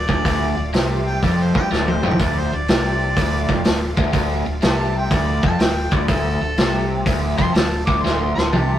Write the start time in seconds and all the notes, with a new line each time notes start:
Already playing: A3 F4 D5
0.09 D1 D2, kick
0.25 D1 D2, kick, open hi-hat
0.57 D1 D2
0.73 C2 C3, snare, open hi-hat
1.07 G5
1.23 F1 F2 D5, kick, open hi-hat
1.41 C5
1.55 G1 G2 G5, kick
1.71 D1 D2 D5, snare
1.88 C5, high tom
2.03 F1 F2 G5, mid tom
2.11 floor tom
2.19 D1 D2 A3 D4 F4 D5, kick, open hi-hat
2.39 C5
2.53 D1 D2 D5
2.68 C2 C3, snare, open hi-hat
3.17 D1 D2, kick, open hi-hat
3.49 F1 F2, kick
3.65 D1 D2, snare, open hi-hat
3.97 D1 D2, kick
4.13 D1 D2, kick, open hi-hat
4.47 D1 D2
4.62 C2 C3 A5, snare, open hi-hat
4.98 G5
5.11 D1 D2 D5, kick, open hi-hat
5.43 F1 F2 A5, kick
5.60 D1 D2 G5, snare, open hi-hat
5.92 D1 D2 D5, kick
6.07 D1 D2 F3 A3 D4 A4, kick, open hi-hat
6.41 D1 D2
6.57 C2 C3, snare, open hi-hat
7.06 D1 D2, kick, open hi-hat
7.37 F1 F2 C6, kick
7.54 D1 D2 A5, snare, open hi-hat
7.86 D1 D2 D6, kick
8.02 D1 D2 C6, snare
8.35 D1 D2 C6, snare
8.52 C2 C3 A5, high tom